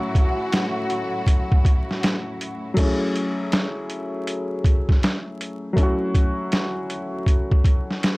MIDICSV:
0, 0, Header, 1, 4, 480
1, 0, Start_track
1, 0, Key_signature, 3, "minor"
1, 0, Tempo, 750000
1, 1773, Time_signature, 4, 2, 24, 8
1, 5229, End_track
2, 0, Start_track
2, 0, Title_t, "Upright piano"
2, 0, Program_c, 0, 0
2, 0, Control_c, 0, 64, 127
2, 0, Note_on_c, 0, 54, 79
2, 0, Note_on_c, 0, 57, 68
2, 0, Note_on_c, 0, 61, 72
2, 0, Note_on_c, 0, 64, 67
2, 0, Note_on_c, 0, 66, 87
2, 1496, Note_off_c, 0, 54, 0
2, 1504, Note_off_c, 0, 57, 0
2, 1512, Note_off_c, 0, 61, 0
2, 1520, Note_off_c, 0, 64, 0
2, 1528, Note_off_c, 0, 66, 0
2, 1754, Note_on_c, 0, 54, 79
2, 1770, Note_on_c, 0, 57, 72
2, 1783, Control_c, 0, 64, 0
2, 1785, Note_on_c, 0, 61, 73
2, 1801, Note_on_c, 0, 64, 68
2, 1818, Note_on_c, 0, 68, 75
2, 1882, Control_c, 0, 64, 127
2, 3658, Note_off_c, 0, 54, 0
2, 3666, Note_off_c, 0, 57, 0
2, 3667, Note_on_c, 0, 54, 82
2, 3674, Note_off_c, 0, 61, 0
2, 3682, Note_off_c, 0, 64, 0
2, 3683, Note_on_c, 0, 57, 65
2, 3690, Note_off_c, 0, 68, 0
2, 3698, Note_on_c, 0, 61, 72
2, 3714, Note_on_c, 0, 64, 71
2, 3729, Note_on_c, 0, 66, 93
2, 5229, Note_off_c, 0, 54, 0
2, 5229, Note_off_c, 0, 57, 0
2, 5229, Note_off_c, 0, 61, 0
2, 5229, Note_off_c, 0, 64, 0
2, 5229, Note_off_c, 0, 66, 0
2, 5229, End_track
3, 0, Start_track
3, 0, Title_t, "String section"
3, 0, Program_c, 1, 48
3, 0, Note_on_c, 1, 45, 83
3, 0, Note_on_c, 1, 54, 79
3, 0, Note_on_c, 1, 64, 78
3, 0, Note_on_c, 1, 66, 92
3, 1748, Note_off_c, 1, 45, 0
3, 1749, Note_off_c, 1, 54, 0
3, 1749, Note_off_c, 1, 64, 0
3, 1753, Note_off_c, 1, 66, 0
3, 5229, End_track
4, 0, Start_track
4, 0, Title_t, "Drums"
4, 96, Note_on_c, 9, 36, 110
4, 101, Note_on_c, 9, 42, 68
4, 160, Note_off_c, 9, 36, 0
4, 165, Note_off_c, 9, 42, 0
4, 336, Note_on_c, 9, 42, 94
4, 343, Note_on_c, 9, 38, 127
4, 400, Note_off_c, 9, 42, 0
4, 407, Note_off_c, 9, 38, 0
4, 576, Note_on_c, 9, 42, 53
4, 640, Note_off_c, 9, 42, 0
4, 810, Note_on_c, 9, 36, 77
4, 817, Note_on_c, 9, 42, 82
4, 874, Note_off_c, 9, 36, 0
4, 881, Note_off_c, 9, 42, 0
4, 971, Note_on_c, 9, 36, 93
4, 1035, Note_off_c, 9, 36, 0
4, 1054, Note_on_c, 9, 36, 98
4, 1062, Note_on_c, 9, 42, 67
4, 1118, Note_off_c, 9, 36, 0
4, 1126, Note_off_c, 9, 42, 0
4, 1220, Note_on_c, 9, 38, 38
4, 1284, Note_off_c, 9, 38, 0
4, 1300, Note_on_c, 9, 42, 82
4, 1306, Note_on_c, 9, 38, 100
4, 1364, Note_off_c, 9, 42, 0
4, 1370, Note_off_c, 9, 38, 0
4, 1543, Note_on_c, 9, 42, 69
4, 1607, Note_off_c, 9, 42, 0
4, 1771, Note_on_c, 9, 49, 85
4, 1773, Note_on_c, 9, 36, 103
4, 1778, Note_on_c, 9, 42, 72
4, 1835, Note_off_c, 9, 49, 0
4, 1837, Note_off_c, 9, 36, 0
4, 1842, Note_off_c, 9, 42, 0
4, 2020, Note_on_c, 9, 42, 61
4, 2084, Note_off_c, 9, 42, 0
4, 2253, Note_on_c, 9, 42, 84
4, 2260, Note_on_c, 9, 38, 111
4, 2317, Note_off_c, 9, 42, 0
4, 2324, Note_off_c, 9, 38, 0
4, 2494, Note_on_c, 9, 42, 51
4, 2558, Note_off_c, 9, 42, 0
4, 2735, Note_on_c, 9, 42, 76
4, 2799, Note_off_c, 9, 42, 0
4, 2972, Note_on_c, 9, 36, 101
4, 2980, Note_on_c, 9, 42, 63
4, 3036, Note_off_c, 9, 36, 0
4, 3044, Note_off_c, 9, 42, 0
4, 3128, Note_on_c, 9, 36, 86
4, 3139, Note_on_c, 9, 38, 36
4, 3192, Note_off_c, 9, 36, 0
4, 3203, Note_off_c, 9, 38, 0
4, 3220, Note_on_c, 9, 42, 75
4, 3226, Note_on_c, 9, 38, 106
4, 3284, Note_off_c, 9, 42, 0
4, 3290, Note_off_c, 9, 38, 0
4, 3461, Note_on_c, 9, 42, 64
4, 3525, Note_off_c, 9, 42, 0
4, 3691, Note_on_c, 9, 36, 108
4, 3698, Note_on_c, 9, 42, 74
4, 3755, Note_off_c, 9, 36, 0
4, 3762, Note_off_c, 9, 42, 0
4, 3934, Note_on_c, 9, 36, 104
4, 3937, Note_on_c, 9, 42, 69
4, 3998, Note_off_c, 9, 36, 0
4, 4001, Note_off_c, 9, 42, 0
4, 4172, Note_on_c, 9, 42, 84
4, 4179, Note_on_c, 9, 38, 114
4, 4236, Note_off_c, 9, 42, 0
4, 4243, Note_off_c, 9, 38, 0
4, 4415, Note_on_c, 9, 42, 53
4, 4479, Note_off_c, 9, 42, 0
4, 4649, Note_on_c, 9, 36, 82
4, 4658, Note_on_c, 9, 42, 77
4, 4713, Note_off_c, 9, 36, 0
4, 4722, Note_off_c, 9, 42, 0
4, 4809, Note_on_c, 9, 36, 89
4, 4873, Note_off_c, 9, 36, 0
4, 4892, Note_on_c, 9, 36, 94
4, 4899, Note_on_c, 9, 42, 60
4, 4956, Note_off_c, 9, 36, 0
4, 4963, Note_off_c, 9, 42, 0
4, 5060, Note_on_c, 9, 38, 36
4, 5124, Note_off_c, 9, 38, 0
4, 5140, Note_on_c, 9, 42, 77
4, 5146, Note_on_c, 9, 38, 102
4, 5204, Note_off_c, 9, 42, 0
4, 5210, Note_off_c, 9, 38, 0
4, 5229, End_track
0, 0, End_of_file